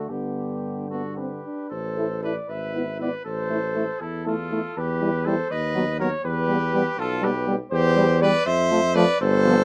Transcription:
Already playing: tuba D2, french horn A3, cornet A4
0.08 tuba G2, euphonium D3, french horn B3, trumpet G4, cornet G4
0.89 french horn B3, trumpet F#4, cornet A4
1.16 french horn C4, trumpet G4, cornet B4
1.44 french horn D4
1.69 tuba A1, trumpet A4, cornet C5
1.97 euphonium E4, french horn A4
2.23 euphonium E4, french horn A4, trumpet B4, cornet D5
2.49 tuba G#1, trumpet B4, cornet E5
2.74 euphonium B3, french horn E4
2.99 euphonium B3, french horn E4, trumpet B4, cornet D5
3.25 tuba A1, trumpet A4, cornet C5
3.50 euphonium A3, french horn E4
3.75 euphonium A3, french horn E4
4.01 tuba E2, trumpet E4, cornet A4
4.26 euphonium A3, french horn E4, trumpet F4, cornet A4
4.51 euphonium A3, french horn E4
4.77 tuba E2, trumpet G4, cornet B4
5.01 euphonium G3, french horn E4
5.25 euphonium G3, french horn E4, trumpet A4, cornet C5
5.50 tuba D#2, trumpet B4, cornet D#5
5.75 euphonium F#3, french horn B3
5.99 euphonium F#3, french horn B3, trumpet A#4, cornet C#5
6.24 tuba E2, trumpet G4, cornet B4
6.48 euphonium G3, french horn B3
6.73 euphonium G3, french horn B3
6.98 tuba B1, trumpet F4, cornet A4
7.21 euphonium G3, french horn B3, trumpet G4, cornet B4
7.47 euphonium G3, french horn B3
7.71 tuba E2, trumpet G4, cornet C5
7.96 euphonium G3, french horn G3
8.21 french horn G3, euphonium G3, trumpet B4, cornet D5
8.46 tuba F2, trumpet C5, cornet E5
8.71 euphonium F3, french horn A3
8.95 euphonium F3, french horn A3, trumpet B4, cornet D5
9.21 tuba G1, trumpet A4, cornet C5
9.45 euphonium F3, french horn B3

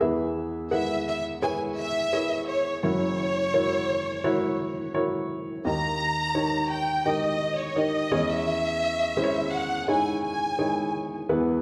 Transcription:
0.01 upright piano E2 E3 E4 G#4 B4 E5
0.71 upright piano E4 G#4 B4 F#5, violin section E5
1.08 violin section E5
1.42 upright piano E4 G#4 B4 C#5, violin section G#5
1.78 violin section E5
2.13 upright piano E4 G#4 B4 C#5
2.48 violin section C#5
2.83 upright piano F#1 F#2 E4 F#4 A#4 C#5, violin section C#5
3.54 upright piano E4 F#4 A#4 C#5
4.24 upright piano E4 F#4 A#4 C#5
4.94 upright piano E4 F#4 A#4 C#5
5.65 upright piano D#2 D#3 D#4 G4 A#4 D#5, violin section A#5
6.35 upright piano D#4 G4 A#4 C#5
6.72 violin section G5
7.06 upright piano D#4 G4 A#4 D#5, violin section D#5
7.59 violin section C#5
7.76 upright piano D#4 G4 A#4 D#5, violin section D#5
8.12 upright piano E2 E3 C#4 E4 G#4 C#5
8.30 violin section E5
9.17 upright piano C#4 E4 G#4 C5
9.24 upright piano C#5
9.54 violin section F#5
9.88 upright piano D#4 E4 G#4 C#5, violin section G#5
10.24 violin section G#5
10.59 upright piano D#4 E4 G#4 C#5
11.29 upright piano E2 E3 B3 E4 G#4 B4

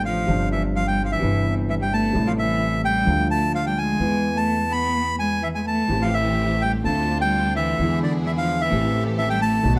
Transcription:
Already playing: upright bass A1, grand piano A1 A2 C3 F3 A3 D4
0.05 cello F3, bandoneon F5
0.27 upright bass G1, grand piano G1 G2 C3 F3 G3 D4
0.52 cello E3, bandoneon E5
0.76 cello F3, bandoneon F5
0.87 cello G3, bandoneon G5
1.03 cello F3, bandoneon F5
1.11 cello E3, bandoneon E5
1.19 grand piano G1 G2 C3 G3 B3, upright bass G1
1.24 grand piano E4
1.69 cello E3, bandoneon E5
1.80 cello G3, bandoneon G5
1.92 cello A3, bandoneon A5
2.13 grand piano A1 A2 C3 G3 A3 E4, upright bass A1
2.27 cello F3, bandoneon F5
2.38 cello E3, bandoneon E5
2.84 cello G3, bandoneon G5
3.05 upright bass D2, grand piano D2 D3 F3 A3
3.09 grand piano F4
3.31 cello A3, bandoneon A5
3.54 cello F3, bandoneon F5
3.65 cello G3, bandoneon G5
3.78 cello G#3, bandoneon G#5
4.00 upright bass E2, grand piano E2 E3 B3 B4
4.35 cello A3, bandoneon A5
4.70 cello B3, bandoneon B5
5.19 cello G#3, bandoneon G#5
5.42 cello E3, bandoneon E5
5.54 cello G#3, bandoneon G#5
5.66 cello A3, bandoneon A5
5.88 upright bass A1, grand piano A1 A2 E3 A3 C4, string section A3 C4 G4
5.92 grand piano G4
6.02 cello F3, bandoneon F5
6.14 cello E3, bandoneon E5
6.61 cello G3, bandoneon G5
6.83 grand piano D2 D3 A3 C4 F4, upright bass D2, cello A3, string section C4 D4 F4, bandoneon A5
7.21 cello G3, bandoneon G5
7.56 cello E3, bandoneon E5
7.78 upright bass E2, grand piano E2 D3 E3 G#3 B3, string section D4 E4 G#4
7.82 grand piano E4
8.03 cello D3, bandoneon D5
8.25 cello E3, bandoneon E5
8.37 cello F3, bandoneon F5
8.61 cello E3, bandoneon E5
8.70 grand piano A1 A2 E3 A3 C4 G4, upright bass A1, string section C4 G4 A4
9.18 cello E3, bandoneon E5
9.30 cello G3, bandoneon G5
9.41 cello A3, bandoneon A5
9.62 grand piano B1 B2 D#3 A3 B3, upright bass B1, string section B3 D#4 A4
9.66 grand piano F#4
9.75 cello F#3

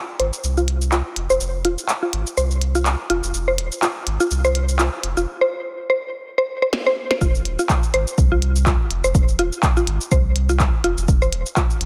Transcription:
0.20 sub bass G#1, synth arpeggio sound C5, closed hi-hat
0.33 shaker
0.44 sub bass C2, shaker
0.57 synth arpeggio sound F4, shaker
0.68 closed hi-hat
0.82 shaker
0.92 synth arpeggio sound F4, clap, shaker
1.16 sub bass F1, closed hi-hat
1.30 sub bass F1, synth arpeggio sound C5, shaker
1.41 sub bass F1, shaker
1.65 sub bass D#1, synth arpeggio sound F4, closed hi-hat
1.78 shaker
1.89 clap, shaker
2.03 synth arpeggio sound F4
2.13 sub bass G#1, closed hi-hat
2.27 shaker
2.37 sub bass C2, synth arpeggio sound C5, shaker
2.51 shaker
2.62 closed hi-hat
2.75 synth arpeggio sound F4, shaker
2.86 clap, shaker
3.10 sub bass F1, synth arpeggio sound F4, closed hi-hat
3.24 sub bass F1, shaker
3.34 sub bass F1, shaker
3.48 synth arpeggio sound C5
3.58 sub bass D#1, closed hi-hat
3.72 shaker
3.83 synth arpeggio sound F4, clap, shaker
4.07 sub bass G#1, closed hi-hat
4.20 synth arpeggio sound F4, shaker
4.31 sub bass C2, shaker
4.45 synth arpeggio sound C5, shaker
4.55 closed hi-hat
4.69 shaker
4.79 synth arpeggio sound F4, clap, shaker
5.04 sub bass F1, closed hi-hat
5.17 sub bass F1, synth arpeggio sound F4, shaker
5.41 synth arpeggio sound C5
5.90 synth arpeggio sound C5
6.38 synth arpeggio sound C5
6.62 synth arpeggio sound C5
6.73 snare
6.86 synth arpeggio sound C5
7.11 synth arpeggio sound C5, snare
7.21 sub bass F1, synth arpeggio sound F4, kick, shaker
7.35 shaker
7.45 sub bass D#1, closed hi-hat
7.59 synth arpeggio sound F4, shaker
7.70 kick, clap, shaker
7.83 shaker
7.94 sub bass G#1, synth arpeggio sound C5, closed hi-hat
8.07 shaker
8.18 sub bass C2, kick, shaker
8.32 synth arpeggio sound F4
8.42 closed hi-hat
8.56 shaker
8.66 synth arpeggio sound F4, kick, clap, shaker
8.91 sub bass F1, closed hi-hat
9.04 sub bass F1, synth arpeggio sound C5, shaker
9.15 sub bass F1, kick, shaker
9.28 shaker
9.39 sub bass D#1, synth arpeggio sound F4, closed hi-hat
9.53 shaker
9.63 kick, clap, shaker
9.77 synth arpeggio sound F4, shaker
9.87 sub bass G#1, closed hi-hat
10.01 shaker
10.12 sub bass C2, synth arpeggio sound C5, kick, shaker
10.36 closed hi-hat
10.49 synth arpeggio sound F4, shaker
10.60 kick, clap, shaker
10.84 sub bass F1, synth arpeggio sound F4, closed hi-hat
10.98 sub bass F1, shaker
11.08 sub bass F1, kick, shaker
11.22 synth arpeggio sound C5, shaker
11.32 sub bass D#1, closed hi-hat
11.46 shaker
11.57 synth arpeggio sound F4, kick, clap, shaker
11.70 shaker
11.81 sub bass G#1, closed hi-hat

